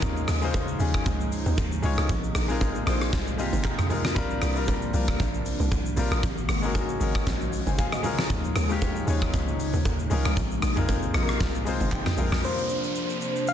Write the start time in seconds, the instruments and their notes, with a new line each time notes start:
Already playing: analog synth pad C#3 F3 G#3 D#4, grand piano G#3 C#4 D#4 F4 A#4
0.02 log drum bass D#2, kick, hi-hat pedal, low conga, shaker
0.17 shaker
0.28 log drum bass D#2, cross-stick, open hi-hat, high bongo, shaker
0.41 grand piano G#3 C#4 D#4 F4 C5, shaker
0.54 kick, hi-hat pedal, high bongo, low bongo, shaker
0.68 shaker
0.79 log drum bass D#2, grand piano G#3 C#4 D#4 F4 G#4, open hi-hat, shaker
0.94 kick, cross-stick, shaker
1.06 log drum bass C#2, kick, hi-hat pedal, low conga, shaker
1.20 shaker
1.32 open hi-hat, shaker
1.46 log drum bass D#2, low bongo, shaker
1.58 log drum bass D#2, kick, hi-hat pedal, high bongo, shaker
1.72 shaker
1.82 log drum bass C#2, grand piano G#3 C#4 D#4 F4 C#5, open hi-hat, low bongo, low conga, shaker
1.98 log drum bass C#2, cross-stick, shaker
2.09 log drum bass A#1, analog synth pad C3 A#3, kick, hi-hat pedal, low conga, shaker
2.24 shaker
2.35 log drum bass A#1, cross-stick, open hi-hat, high bongo, shaker
2.48 grand piano G#3 C4 D#4 F4 A#4, shaker
2.61 kick, hi-hat pedal, high bongo, low bongo, shaker
2.75 shaker
2.86 log drum bass A#1, grand piano G#3 C4 D4 F4 C5, cross-stick, open hi-hat, shaker
2.94 grand piano D#4
3.01 cross-stick, shaker
3.13 log drum bass C2, kick, snare, hi-hat pedal, low conga, shaker
3.27 shaker
3.38 grand piano G#3 C4 D#4 F4 G4 D#5, open hi-hat, shaker
3.53 log drum bass G1, low bongo, shaker
3.64 grand piano A#5, kick, clap, hi-hat pedal, high bongo, shaker
3.79 cross-stick, mid tom, shaker
3.89 grand piano G#3 C4 D#4 F4 A#4, open hi-hat, low bongo, low conga, shaker
4.05 cross-stick, snare, shaker
4.15 log drum bass C2, analog synth pad F3 D4, grand piano G3 C4 D4 F4 A#4, kick, hi-hat pedal, low conga, shaker
4.30 shaker
4.42 log drum bass C2, cross-stick, open hi-hat, high bongo, shaker
4.55 grand piano G3 C4 D4 F4 A#4, shaker
4.68 kick, hi-hat pedal, high bongo, low bongo, shaker
4.82 shaker
4.93 log drum bass C2, grand piano G3 C4 D4 F4 A#4, open hi-hat, shaker
5.08 kick, cross-stick, shaker
5.20 log drum bass A#1, kick, hi-hat pedal, low conga, shaker
5.34 shaker
5.46 open hi-hat, shaker
5.60 log drum bass C2, low bongo, shaker
5.71 log drum bass C2, kick, hi-hat pedal, high bongo, shaker
5.86 shaker
5.96 log drum bass A#1, grand piano G3 C4 D4 F4 A#4, open hi-hat, low bongo, low conga, shaker
6.11 log drum bass A#1, cross-stick, shaker
6.23 log drum bass G#1, analog synth pad C#3 G#3 F#4, kick, hi-hat pedal, low conga, shaker
6.38 shaker
6.49 log drum bass G#1, cross-stick, open hi-hat, high bongo, shaker
6.62 grand piano G#3 C#4 D#4 F#4 A#4, shaker
6.75 kick, hi-hat pedal, high bongo, low bongo, shaker
6.89 shaker
7.00 log drum bass G#1, grand piano G#3 C#4 D#4 F#4 A#4, open hi-hat, shaker
7.15 kick, cross-stick, shaker
7.27 log drum bass A#1, kick, snare, hi-hat pedal, low conga, shaker
7.41 shaker
7.53 open hi-hat, shaker
7.67 log drum bass F#1, grand piano C5 G#5, low bongo, shaker
7.78 grand piano G#4 F5 G#5, kick, hi-hat pedal, high bongo, shaker
7.92 grand piano F#4 D#5, cross-stick, shaker
8.03 analog synth pad F3 D#4, grand piano G#3 C#4 D#4 F4 A#4, open hi-hat, low bongo, low conga, shaker
8.18 cross-stick, snare, shaker
8.30 log drum bass D#2, kick, hi-hat pedal, low conga, shaker
8.44 shaker
8.56 log drum bass D#2, cross-stick, open hi-hat, high bongo, shaker
8.69 grand piano G#3 C#4 D#4 F4 G4, shaker
8.82 kick, hi-hat pedal, high bongo, low bongo, shaker
8.96 shaker
9.06 log drum bass D#2, grand piano G#3 C#4 D#4 F4 C#5, open hi-hat, shaker
9.22 kick, cross-stick, shaker
9.33 log drum bass C#2, kick, hi-hat pedal, low conga, shaker
9.48 shaker
9.60 open hi-hat, shaker
9.73 log drum bass D#2, low bongo, shaker
9.85 log drum bass D#2, kick, hi-hat pedal, high bongo, shaker
9.99 shaker
10.10 log drum bass C#2, grand piano G#3 C#4 D#4 F4 A#4, open hi-hat, low bongo, low conga, shaker
10.25 log drum bass C#2, cross-stick, shaker
10.37 log drum bass A#1, analog synth pad C3 G#3 A#3, kick, hi-hat pedal, low conga, shaker
10.51 shaker
10.62 log drum bass A#1, cross-stick, open hi-hat, high bongo, shaker
10.76 grand piano G#3 C4 D#4 F4 A#4, mid tom, shaker
10.88 kick, hi-hat pedal, high bongo, low bongo, shaker
11.02 shaker
11.13 log drum bass A#1, grand piano G#3 C4 D#4 F4 G#4, cross-stick, open hi-hat, shaker
11.23 grand piano A#4
11.29 cross-stick, shaker
11.40 log drum bass C2, kick, snare, hi-hat pedal, low conga, shaker
11.55 shaker
11.65 grand piano G#3 C4 D#4 F4 C5 A#5, open hi-hat, shaker
11.80 log drum bass G1, low bongo, shaker
11.92 log drum bass G#1, grand piano G5, kick, clap, hi-hat pedal, high bongo, shaker
12.06 cross-stick, snare, mid tom, shaker
12.17 log drum bass A#1, grand piano G#3 C4 D#4 F4 A#4 F5, open hi-hat, low bongo, low conga, shaker
12.32 log drum bass A#1, cross-stick, snare, shaker
12.41 analog synth pad C3 F3 A#3 D4, grand piano G3 C4 D4, soft synth lead C5, downlifter, shaker
12.46 grand piano F4 A#4
12.58 shaker
12.70 shaker
12.83 shaker
12.95 shaker
13.09 shaker
13.21 shaker
13.36 shaker
13.47 soft synth lead F5, shaker